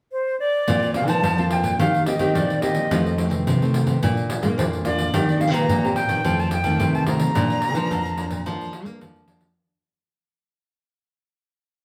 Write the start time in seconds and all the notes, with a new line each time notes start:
0.12 C5
0.40 D5
0.68 A#2 A#3 C4 F4, pandeiro
0.82 pandeiro
0.94 A#3 C4 F4 F5, pandeiro
1.07 F3 A5, pandeiro
1.23 F2 F3, pandeiro
1.38 A#3 C4 F4, pandeiro
1.51 G5, pandeiro
1.63 A#2, pandeiro
1.79 D#3 A#3 C4 G4 F5, pandeiro
1.94 pandeiro
2.06 A#3 C4 G4 D#5, pandeiro
2.19 D#3 A#3 C4 G4, pandeiro
2.35 A#2 D#3 D5, pandeiro
2.50 pandeiro
2.62 A#3 C4 G4 D#5, pandeiro
2.75 pandeiro
2.91 F2 D#3 F3 A3 C4, pandeiro
3.06 pandeiro
3.17 D#3 A3 C4, pandeiro
3.30 C3, pandeiro
3.46 C3, pandeiro
3.62 D#3 A3 C4, pandeiro
3.74 pandeiro
3.87 C3, pandeiro
4.02 A#2 A#3 D4 F4, pandeiro
4.17 pandeiro
4.30 pandeiro
4.42 A#3 D4 F4, pandeiro
4.58 F2 A#2 C5, pandeiro
4.73 pandeiro
4.85 A#3 D4 F4 D5, pandeiro
4.98 pandeiro
5.14 D#3 A#3 C4 G4, pandeiro
5.29 pandeiro
5.41 A#3 C4 G4 F5, pandeiro
5.53 A#2 A#5, pandeiro
5.69 A#2, pandeiro
5.84 A#3 C4 G4, pandeiro
5.96 G5, pandeiro
6.09 D#3, pandeiro
6.25 F2 D#3 F3 A3 C4, pandeiro
6.39 A5, pandeiro
6.51 G5, pandeiro
6.64 D#3 F3 A3 C4, pandeiro
6.79 C3, pandeiro
6.95 A5, pandeiro
7.07 D#3 A3 C4 A#5, pandeiro
7.20 pandeiro
7.35 A#2 F3 A#3 D4, pandeiro
7.50 pandeiro
7.62 pandeiro
7.75 F3 A#3 D4, pandeiro
7.91 F2 F3, pandeiro
8.05 pandeiro
8.17 F3 A#3 D4, pandeiro
8.31 A#2, pandeiro
8.46 A#2 F3 A#3 D4, pandeiro
8.61 pandeiro
8.73 pandeiro
8.86 F3 A#3 D4, pandeiro
9.01 F2 F3, pandeiro
9.16 pandeiro
9.28 F3 A#3 D4, pandeiro
9.41 pandeiro